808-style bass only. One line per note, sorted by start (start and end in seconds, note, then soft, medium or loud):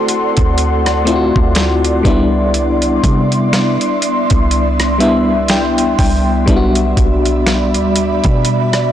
0.38 1.32 D2 loud
1.36 2.03 D2 loud
2.05 3.00 C2 loud
3.04 3.78 C3 loud
4.31 5.95 C2 loud
5.99 6.46 C2 loud
6.48 6.95 B1 loud
6.97 7.77 B1 loud
7.75 8.22 D2 loud
8.25 8.92 B2 loud